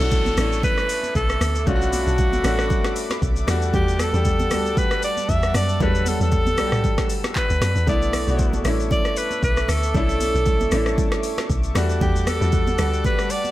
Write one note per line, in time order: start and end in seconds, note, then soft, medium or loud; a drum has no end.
0.00 0.36 B1 loud
0.00 0.37 A3 loud
0.00 0.38 C#4 medium
0.00 0.02 D4 medium
0.00 0.31 D4 medium
0.00 0.40 E4 loud
0.00 0.32 F#4 medium
0.00 0.60 A4 loud
0.00 3.44 A4 medium
0.00 3.44 E5 medium
0.00 1.65 C#6 medium
0.00 5.51 D6 loud
0.00 downlifter medium
0.00 shaker soft
0.11 kick loud
0.11 low conga medium
0.11 shaker medium
0.26 high conga medium
0.26 shaker medium
0.37 0.63 A1 medium
0.37 1.21 A3 medium
0.37 1.21 C#4 medium
0.37 1.22 D4 medium
0.37 1.22 E4 medium
0.37 cross-stick loud
0.37 open hi-hat soft
0.37 high conga medium
0.37 low conga medium
0.37 shaker medium
0.52 shaker soft
0.63 1.12 B4 loud
0.63 kick loud
0.63 low conga medium
0.63 shaker medium
0.78 cross-stick medium
0.78 shaker soft
0.89 open hi-hat medium
0.89 shaker medium
1.03 high conga soft
1.03 shaker medium
1.15 1.40 B1 medium
1.15 1.69 A4 loud
1.15 kick medium
1.15 shaker medium
1.29 cross-stick medium
1.29 shaker medium
1.41 1.66 D2 medium
1.41 cross-stick loud
1.41 open hi-hat medium
1.41 high conga medium
1.41 shaker loud
1.55 shaker medium
1.66 2.06 B1 loud
1.66 2.30 A3 loud
1.66 2.30 C#4 medium
1.66 2.31 D4 medium
1.66 1.75 F4 medium
1.66 3.48 F#4 loud
1.66 3.46 B5 medium
1.66 kick loud
1.66 low conga medium
1.66 shaker medium
1.76 2.34 F#4 loud
1.82 shaker medium
1.93 open hi-hat medium
1.93 high conga medium
1.93 shaker medium
2.07 2.43 B1 loud
2.07 shaker soft
2.18 kick loud
2.18 low conga medium
2.18 shaker medium
2.33 high conga medium
2.33 shaker medium
2.44 2.69 A1 medium
2.44 3.27 A3 medium
2.44 3.28 C#4 medium
2.44 3.28 D4 medium
2.44 3.29 F#4 loud
2.44 cross-stick loud
2.44 open hi-hat soft
2.44 high conga medium
2.44 low conga medium
2.44 shaker medium
2.59 cross-stick loud
2.59 shaker soft
2.70 kick loud
2.70 low conga medium
2.70 shaker medium
2.85 cross-stick medium
2.85 snare medium
2.85 shaker soft
2.96 open hi-hat medium
2.96 shaker medium
3.10 cross-stick medium
3.10 snare medium
3.10 high conga soft
3.10 shaker medium
3.22 3.47 B1 medium
3.22 kick medium
3.22 shaker medium
3.36 shaker medium
3.47 3.73 E2 loud
3.47 3.99 G3 medium
3.47 7.84 G3 medium
3.47 4.00 A3 medium
3.47 4.00 D4 medium
3.47 4.01 F#4 loud
3.47 7.84 F#5 medium
3.47 7.84 A5 medium
3.47 cross-stick loud
3.47 snare medium
3.47 open hi-hat medium
3.47 high conga medium
3.47 shaker loud
3.62 shaker medium
3.74 4.13 E2 loud
3.74 4.02 G4 loud
3.74 kick loud
3.74 low conga medium
3.74 shaker medium
3.88 shaker medium
3.99 4.79 A4 loud
3.99 cross-stick loud
3.99 open hi-hat medium
3.99 high conga medium
3.99 shaker loud
4.13 4.53 E2 loud
4.13 4.44 G3 medium
4.13 4.45 A3 medium
4.13 4.45 D4 medium
4.13 4.46 G4 medium
4.13 shaker soft
4.25 kick loud
4.25 low conga medium
4.25 shaker medium
4.40 high conga medium
4.40 shaker medium
4.51 4.76 D2 medium
4.51 5.34 G3 medium
4.51 5.35 A3 medium
4.51 5.35 D4 medium
4.51 5.36 F#4 medium
4.51 cross-stick loud
4.51 open hi-hat soft
4.51 high conga medium
4.51 low conga medium
4.51 shaker medium
4.66 shaker medium
4.77 5.03 B4 loud
4.77 kick loud
4.77 low conga medium
4.77 shaker medium
4.91 cross-stick loud
4.91 shaker soft
5.03 5.31 D5 loud
5.03 open hi-hat medium
5.03 shaker medium
5.17 high conga soft
5.17 shaker medium
5.29 5.54 E2 medium
5.29 5.55 E5 loud
5.29 kick medium
5.29 shaker medium
5.43 cross-stick medium
5.43 shaker medium
5.54 5.80 F#2 loud
5.54 5.84 D5 loud
5.54 7.85 E6 loud
5.54 cross-stick loud
5.54 open hi-hat medium
5.54 high conga medium
5.54 shaker loud
5.69 shaker medium
5.80 6.19 E2 loud
5.80 5.87 F#3 medium
5.80 6.44 A3 medium
5.80 6.44 D4 medium
5.80 6.45 A4 loud
5.80 6.10 B4 loud
5.80 kick loud
5.80 low conga medium
5.80 shaker medium
5.86 6.47 G3 loud
5.95 shaker medium
6.06 6.22 A4 medium
6.06 open hi-hat medium
6.06 high conga medium
6.06 shaker medium
6.20 6.59 E2 loud
6.20 7.21 A4 loud
6.20 shaker soft
6.32 kick loud
6.32 low conga medium
6.32 shaker medium
6.46 high conga medium
6.46 shaker medium
6.57 6.83 B1 loud
6.57 7.41 G3 medium
6.57 7.42 A3 medium
6.57 7.42 D4 medium
6.57 6.66 F#4 medium
6.57 cross-stick loud
6.57 open hi-hat soft
6.57 high conga medium
6.57 low conga medium
6.57 shaker medium
6.67 7.46 G4 medium
6.72 cross-stick loud
6.72 mid tom loud
6.72 shaker medium
6.84 kick loud
6.84 low conga medium
6.84 shaker medium
6.98 kick loud
6.98 cross-stick loud
6.98 snare medium
6.98 shaker soft
7.10 open hi-hat medium
7.10 shaker medium
7.24 cross-stick medium
7.24 snare medium
7.24 high conga soft
7.24 shaker medium
7.35 7.85 B4 loud
7.35 kick medium
7.35 clap loud
7.35 shaker medium
7.50 7.61 D2 medium
7.50 shaker medium
7.61 7.75 F#2 medium
7.61 cross-stick loud
7.61 snare medium
7.61 open hi-hat medium
7.61 high conga medium
7.61 shaker loud
7.76 7.87 E2 medium
7.76 shaker medium
7.86 8.26 B1 loud
7.86 8.19 A3 loud
7.86 8.19 B3 medium
7.86 8.20 D4 medium
7.86 8.20 E4 loud
7.86 11.71 A4 medium
7.86 8.62 D5 loud
7.86 11.71 E5 medium
7.86 11.72 C#6 medium
7.86 11.71 D6 loud
7.86 kick loud
7.86 low conga medium
7.86 shaker medium
8.02 shaker medium
8.13 cross-stick loud
8.13 open hi-hat medium
8.13 high conga medium
8.13 shaker medium
8.27 8.64 B1 loud
8.27 8.58 A3 medium
8.27 8.58 B3 medium
8.27 8.59 D4 medium
8.27 8.59 F#4 medium
8.27 shaker soft
8.39 kick loud
8.39 low conga medium
8.39 shaker medium
8.53 high conga medium
8.53 shaker medium
8.64 8.90 A1 medium
8.64 9.48 A3 medium
8.64 9.49 C#4 medium
8.64 9.49 D4 medium
8.64 9.50 E4 loud
8.64 cross-stick loud
8.64 open hi-hat soft
8.64 high conga medium
8.64 low conga medium
8.64 shaker medium
8.80 shaker medium
8.91 9.19 D5 loud
8.91 kick loud
8.91 low conga medium
8.91 shaker medium
9.05 cross-stick medium
9.05 shaker soft
9.17 9.43 B4 loud
9.17 open hi-hat medium
9.17 shaker medium
9.31 high conga soft
9.31 shaker medium
9.43 9.68 B1 medium
9.43 9.71 B4 loud
9.43 kick medium
9.43 shaker medium
9.57 cross-stick medium
9.57 shaker medium
9.68 9.94 D2 medium
9.68 11.24 A4 loud
9.68 cross-stick loud
9.68 open hi-hat medium
9.68 high conga medium
9.68 shaker loud
9.83 shaker medium
9.94 10.33 B1 loud
9.94 10.57 A3 loud
9.94 10.58 C#4 medium
9.94 10.58 D4 medium
9.94 10.59 E4 loud
9.94 kick loud
9.94 low conga medium
9.94 shaker medium
10.09 shaker medium
10.21 open hi-hat medium
10.21 high conga medium
10.21 shaker loud
10.35 10.71 B1 loud
10.35 shaker soft
10.46 kick loud
10.46 low conga medium
10.46 shaker medium
10.60 high conga medium
10.60 shaker medium
10.71 10.97 A1 medium
10.71 11.55 A3 medium
10.71 11.55 C#4 medium
10.71 11.56 D4 medium
10.71 11.56 E4 loud
10.71 cross-stick loud
10.71 open hi-hat soft
10.71 high conga medium
10.71 low conga medium
10.71 shaker medium
10.86 cross-stick medium
10.86 shaker medium
10.98 kick loud
10.98 low conga medium
10.98 shaker medium
11.12 cross-stick medium
11.12 snare medium
11.12 shaker soft
11.23 open hi-hat medium
11.23 shaker medium
11.38 cross-stick loud
11.38 snare medium
11.38 high conga soft
11.38 shaker medium
11.50 11.75 B1 loud
11.50 kick medium
11.50 shaker medium
11.64 shaker medium
11.75 12.01 E2 loud
11.75 12.27 G3 medium
11.75 13.51 G3 medium
11.75 12.27 A3 medium
11.75 12.28 D4 medium
11.75 12.28 F#4 loud
11.75 13.51 F#5 medium
11.75 13.51 A5 medium
11.75 13.51 D6 loud
11.75 cross-stick loud
11.75 snare medium
11.75 open hi-hat medium
11.75 high conga medium
11.75 shaker loud
11.90 shaker medium
12.01 12.40 E2 loud
12.01 12.29 G4 loud
12.01 kick loud
12.01 low conga medium
12.01 shaker medium
12.16 shaker medium
12.27 13.05 A4 loud
12.27 cross-stick loud
12.27 open hi-hat medium
12.27 high conga medium
12.27 shaker medium
12.41 12.78 E2 loud
12.41 12.72 G3 medium
12.41 12.72 A3 medium
12.41 12.73 D4 medium
12.41 12.73 F#4 medium
12.41 shaker soft
12.52 kick loud
12.52 low conga medium
12.52 shaker medium
12.67 high conga medium
12.67 shaker medium
12.78 13.04 D2 medium
12.78 13.51 G3 medium
12.78 13.51 A3 medium
12.78 13.51 D4 medium
12.78 13.51 F#4 medium
12.78 cross-stick loud
12.78 open hi-hat soft
12.78 high conga medium
12.78 low conga medium
12.78 shaker medium
12.93 shaker medium
13.04 13.32 B4 loud
13.04 kick loud
13.04 low conga medium
13.04 shaker medium
13.19 cross-stick medium
13.19 shaker medium
13.30 13.51 D5 loud
13.30 open hi-hat medium
13.30 shaker medium
13.44 high conga soft
13.44 shaker medium